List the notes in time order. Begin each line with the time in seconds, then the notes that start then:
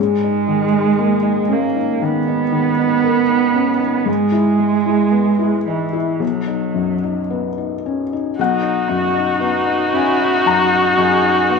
0.00 G#2 G#3
0.24 D#4
0.48 D#3
0.73 D#4
0.98 A#3
1.23 D#4
1.48 A#3 C#4
1.76 D#4
2.01 D#3 B3
2.28 D#4
2.52 D#3
2.79 D#4
3.04 A#4
3.29 D#4
3.54 C#4
3.79 D#4
4.06 G#2 G#3
4.32 E4
4.59 G#3
4.86 E4
5.12 B3
5.39 E4
5.67 E3 D#4
5.93 E4
6.20 B1 F#3
6.47 D#4
6.74 F#2
7.04 D#4
7.30 B3
7.58 D#4
7.86 C#4
8.13 D#4
8.39 B1 D#4 F#4 F#5
8.63 D#4
8.88 F#2 F#4
9.13 D#4
9.40 B3 D#4
9.67 D#4
9.93 C#4 E4 G#5
10.21 D#4
10.46 F#2 F#4 A#5
10.73 D#4
10.97 F#2 G#4
11.22 D#4
11.49 B3 F#4